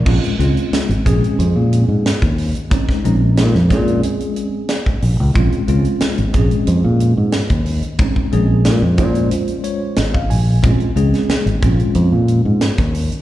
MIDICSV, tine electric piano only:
0, 0, Header, 1, 2, 480
1, 0, Start_track
1, 0, Key_signature, -5, "minor"
1, 0, Tempo, 660793
1, 42, Time_signature, 4, 2, 24, 8
1, 9602, End_track
2, 0, Start_track
2, 0, Title_t, "Tine electric piano"
2, 0, Program_c, 0, 4
2, 42, Note_on_c, 0, 56, 80
2, 44, Note_on_c, 0, 60, 70
2, 48, Note_on_c, 0, 61, 73
2, 51, Note_on_c, 0, 65, 86
2, 233, Note_off_c, 0, 56, 0
2, 233, Note_off_c, 0, 60, 0
2, 235, Note_off_c, 0, 61, 0
2, 237, Note_off_c, 0, 65, 0
2, 281, Note_on_c, 0, 56, 72
2, 287, Note_on_c, 0, 60, 68
2, 290, Note_on_c, 0, 61, 60
2, 292, Note_on_c, 0, 65, 79
2, 663, Note_off_c, 0, 56, 0
2, 666, Note_off_c, 0, 60, 0
2, 667, Note_off_c, 0, 61, 0
2, 668, Note_off_c, 0, 65, 0
2, 763, Note_on_c, 0, 56, 68
2, 768, Note_on_c, 0, 61, 65
2, 769, Note_on_c, 0, 60, 68
2, 774, Note_on_c, 0, 68, 89
2, 1519, Note_off_c, 0, 56, 0
2, 1522, Note_off_c, 0, 60, 0
2, 1522, Note_off_c, 0, 61, 0
2, 1524, Note_off_c, 0, 68, 0
2, 1965, Note_on_c, 0, 56, 75
2, 1971, Note_on_c, 0, 60, 69
2, 1972, Note_on_c, 0, 61, 72
2, 1975, Note_on_c, 0, 63, 89
2, 2156, Note_off_c, 0, 56, 0
2, 2159, Note_off_c, 0, 60, 0
2, 2159, Note_off_c, 0, 61, 0
2, 2161, Note_off_c, 0, 63, 0
2, 2210, Note_on_c, 0, 56, 67
2, 2210, Note_on_c, 0, 60, 63
2, 2215, Note_on_c, 0, 61, 70
2, 2216, Note_on_c, 0, 63, 82
2, 2588, Note_off_c, 0, 56, 0
2, 2588, Note_off_c, 0, 60, 0
2, 2591, Note_off_c, 0, 61, 0
2, 2591, Note_off_c, 0, 63, 0
2, 2685, Note_on_c, 0, 56, 74
2, 2689, Note_on_c, 0, 60, 64
2, 2694, Note_on_c, 0, 61, 68
2, 2694, Note_on_c, 0, 68, 80
2, 3440, Note_off_c, 0, 56, 0
2, 3442, Note_off_c, 0, 60, 0
2, 3444, Note_off_c, 0, 61, 0
2, 3445, Note_off_c, 0, 68, 0
2, 3882, Note_on_c, 0, 56, 81
2, 3887, Note_on_c, 0, 60, 74
2, 3889, Note_on_c, 0, 61, 70
2, 3893, Note_on_c, 0, 65, 83
2, 4074, Note_off_c, 0, 56, 0
2, 4077, Note_off_c, 0, 60, 0
2, 4078, Note_off_c, 0, 61, 0
2, 4080, Note_off_c, 0, 65, 0
2, 4125, Note_on_c, 0, 56, 72
2, 4128, Note_on_c, 0, 60, 66
2, 4133, Note_on_c, 0, 65, 79
2, 4134, Note_on_c, 0, 61, 67
2, 4506, Note_off_c, 0, 56, 0
2, 4507, Note_off_c, 0, 60, 0
2, 4510, Note_off_c, 0, 61, 0
2, 4510, Note_off_c, 0, 65, 0
2, 4601, Note_on_c, 0, 56, 74
2, 4604, Note_on_c, 0, 60, 66
2, 4609, Note_on_c, 0, 61, 74
2, 4611, Note_on_c, 0, 68, 77
2, 5358, Note_off_c, 0, 56, 0
2, 5359, Note_off_c, 0, 60, 0
2, 5362, Note_off_c, 0, 61, 0
2, 5363, Note_off_c, 0, 68, 0
2, 5803, Note_on_c, 0, 56, 80
2, 5807, Note_on_c, 0, 60, 70
2, 5810, Note_on_c, 0, 61, 74
2, 5812, Note_on_c, 0, 63, 79
2, 5995, Note_off_c, 0, 56, 0
2, 5997, Note_off_c, 0, 60, 0
2, 5998, Note_off_c, 0, 61, 0
2, 5999, Note_off_c, 0, 63, 0
2, 6045, Note_on_c, 0, 56, 72
2, 6049, Note_on_c, 0, 60, 65
2, 6051, Note_on_c, 0, 61, 62
2, 6054, Note_on_c, 0, 68, 85
2, 6425, Note_off_c, 0, 56, 0
2, 6427, Note_off_c, 0, 60, 0
2, 6428, Note_off_c, 0, 61, 0
2, 6430, Note_off_c, 0, 68, 0
2, 6521, Note_on_c, 0, 56, 71
2, 6522, Note_on_c, 0, 72, 68
2, 6528, Note_on_c, 0, 61, 66
2, 6529, Note_on_c, 0, 65, 83
2, 7002, Note_on_c, 0, 73, 68
2, 7227, Note_off_c, 0, 73, 0
2, 7241, Note_on_c, 0, 75, 64
2, 7277, Note_off_c, 0, 56, 0
2, 7278, Note_off_c, 0, 72, 0
2, 7280, Note_off_c, 0, 61, 0
2, 7281, Note_off_c, 0, 65, 0
2, 7358, Note_off_c, 0, 75, 0
2, 7364, Note_on_c, 0, 77, 66
2, 7475, Note_off_c, 0, 77, 0
2, 7483, Note_on_c, 0, 80, 65
2, 7708, Note_off_c, 0, 80, 0
2, 7718, Note_on_c, 0, 56, 82
2, 7723, Note_on_c, 0, 60, 72
2, 7726, Note_on_c, 0, 61, 67
2, 7727, Note_on_c, 0, 65, 79
2, 7911, Note_off_c, 0, 56, 0
2, 7914, Note_off_c, 0, 60, 0
2, 7915, Note_off_c, 0, 61, 0
2, 7916, Note_off_c, 0, 65, 0
2, 7962, Note_on_c, 0, 56, 68
2, 7963, Note_on_c, 0, 60, 61
2, 7965, Note_on_c, 0, 61, 67
2, 7967, Note_on_c, 0, 68, 82
2, 8343, Note_off_c, 0, 56, 0
2, 8344, Note_off_c, 0, 60, 0
2, 8345, Note_off_c, 0, 61, 0
2, 8345, Note_off_c, 0, 68, 0
2, 8437, Note_on_c, 0, 56, 69
2, 8444, Note_on_c, 0, 60, 65
2, 8445, Note_on_c, 0, 61, 70
2, 8448, Note_on_c, 0, 65, 84
2, 9195, Note_off_c, 0, 56, 0
2, 9198, Note_off_c, 0, 60, 0
2, 9198, Note_off_c, 0, 61, 0
2, 9200, Note_off_c, 0, 65, 0
2, 9602, End_track
0, 0, End_of_file